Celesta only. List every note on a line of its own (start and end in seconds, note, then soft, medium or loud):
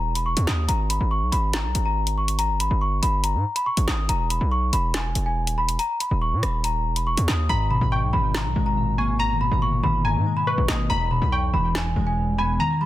0.00 0.13 A#5 medium
0.15 0.24 B5 medium
0.26 0.43 C#6 medium
0.47 0.65 D#6 medium
0.68 0.86 A#5 loud
0.90 1.07 B5 medium
1.11 1.29 C#6 medium
1.32 1.50 B5 medium
1.54 1.84 A#5 medium
1.85 2.16 A#5 medium
2.18 2.35 C#6 medium
2.39 2.56 A#5 loud
2.60 2.78 B5 medium
2.81 2.99 C#6 medium
3.02 3.20 B5 medium
3.24 3.54 A#5 medium
3.56 3.65 B5 medium
3.66 3.84 C#6 medium
3.88 4.05 D#6 medium
4.09 4.27 A#5 loud
4.30 4.48 B5 medium
4.52 4.69 C#6 medium
4.73 4.91 B5 medium
4.94 5.24 G#5 medium
5.26 5.56 G#5 medium
5.58 5.75 B5 medium
5.79 5.97 A#5 loud
6.00 6.18 B5 medium
6.22 6.39 C#6 medium
6.43 6.60 B5 medium
6.64 6.94 A#5 medium
6.96 7.05 B5 medium
7.07 7.24 C#6 medium
7.28 7.46 D#6 medium
7.49 7.67 A#5 loud
7.71 7.88 B5 medium
7.92 8.09 C#6 medium
8.13 8.31 B5 medium
8.34 8.64 A#5 medium
8.66 8.96 A#5 medium
8.98 9.16 C#6 medium
9.19 9.37 A#5 loud
9.41 9.58 B5 medium
9.62 9.80 C#6 medium
9.83 10.01 B5 medium
10.05 10.35 A#5 medium
10.37 10.45 B5 medium
10.47 10.65 C#6 medium
10.68 10.86 D#6 medium
10.90 11.07 A#5 loud
11.11 11.29 B5 medium
11.32 11.50 C#6 medium
11.54 11.71 B5 medium
11.75 12.05 G#5 medium
12.07 12.37 G#5 medium
12.38 12.56 B5 medium
12.60 12.77 A#5 loud
12.81 12.86 B5 medium